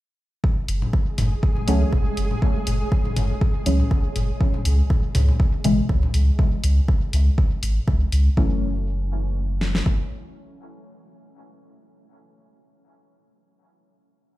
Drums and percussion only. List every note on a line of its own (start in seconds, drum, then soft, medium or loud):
0.44 kick loud
0.44 high conga soft
0.68 open hi-hat medium
0.82 high conga soft
0.93 kick loud
1.18 mid tom medium
1.18 open hi-hat medium
1.18 high conga soft
1.43 kick loud
1.57 high conga soft
1.68 open hi-hat medium
1.93 kick medium
1.93 high conga soft
2.17 open hi-hat medium
2.31 high conga soft
2.42 kick loud
2.67 open hi-hat medium
2.67 high conga soft
2.92 kick loud
3.05 high conga soft
3.16 mid tom medium
3.16 open hi-hat medium
3.41 kick loud
3.41 high conga soft
3.66 open hi-hat medium
3.80 high conga soft
3.91 kick loud
4.16 open hi-hat medium
4.16 high conga soft
4.41 kick loud
4.54 high conga soft
4.65 open hi-hat medium
4.90 kick loud
4.90 high conga soft
5.15 mid tom medium
5.15 open hi-hat medium
5.29 high conga soft
5.40 kick loud
5.64 open hi-hat medium
5.64 high conga soft
5.89 kick loud
6.03 high conga soft
6.14 open hi-hat medium
6.39 kick loud
6.64 open hi-hat medium
6.88 kick loud
7.13 open hi-hat medium
7.38 kick loud
7.63 open hi-hat medium
7.88 kick loud
8.12 open hi-hat medium
8.37 kick loud
9.61 snare medium
9.75 snare medium
9.86 kick medium